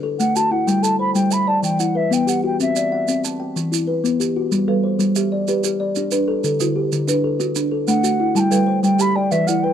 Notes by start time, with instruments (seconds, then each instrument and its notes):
Already playing: kalimba D4
0.03 kalimba A4
0.19 kalimba A3, flute F#5, maracas
0.36 kalimba F#4, flute A5, maracas
0.51 kalimba E4, flute F#5
0.67 kalimba G3, flute G5, maracas
0.83 kalimba A4, flute A5, maracas
0.99 kalimba C5, flute B5
1.15 kalimba G3, flute G5, maracas
1.31 kalimba E5, flute B5, maracas
1.47 kalimba D5, flute A5
1.63 kalimba E3, flute G5, maracas
1.80 kalimba E4, flute F#5, maracas
1.95 kalimba B4, flute E5
2.11 kalimba B3, flute G5, maracas
2.27 kalimba G4, flute F#5, maracas
2.44 kalimba F#4, flute G5
2.60 kalimba C4, flute E5, maracas
2.76 kalimba D5, maracas
2.92 kalimba F#5
3.08 kalimba C4, maracas
3.24 kalimba A5, maracas
3.40 kalimba G5
3.56 kalimba E3, maracas
3.72 kalimba E4, maracas
3.87 kalimba B4
4.04 kalimba B3, maracas
4.20 kalimba G4, maracas
4.36 kalimba F#4
4.52 kalimba G3, maracas
4.68 marimba G3 B4, kalimba A4
4.83 kalimba C5
4.99 kalimba G3, maracas
5.16 marimba G4, kalimba E5, maracas
5.32 kalimba D5
5.48 kalimba G4, marimba B4, maracas
5.64 marimba G4, kalimba G4, maracas
5.80 kalimba D5
5.96 kalimba D4, marimba G4, maracas
6.11 marimba D4, kalimba B4, maracas
6.28 kalimba A4
6.44 kalimba D3, marimba A4, maracas
6.60 marimba D3 F#4, kalimba E4, maracas
6.76 kalimba G4
6.92 kalimba D3, maracas
7.08 marimba D4, kalimba B4, maracas
7.24 kalimba A4
7.40 kalimba D4, marimba F#4, maracas
7.55 marimba D4, kalimba D4, maracas
7.72 kalimba A4
7.88 kalimba A3, marimba D4, flute F#5, maracas
8.03 marimba A3, kalimba F#4, maracas
8.20 kalimba E4
8.35 kalimba G3, marimba E4, flute A5, maracas
8.40 flute G5
8.51 marimba G3 B4, kalimba A4, maracas
8.67 kalimba C5
8.83 kalimba G3, flute G5, maracas
8.99 marimba G4, kalimba E5, flute B5, maracas
9.16 kalimba D5, flute G5
9.31 kalimba E3, marimba B4, flute E5, maracas
9.47 marimba E3, kalimba E4, flute F#5, maracas
9.63 kalimba B4, flute G5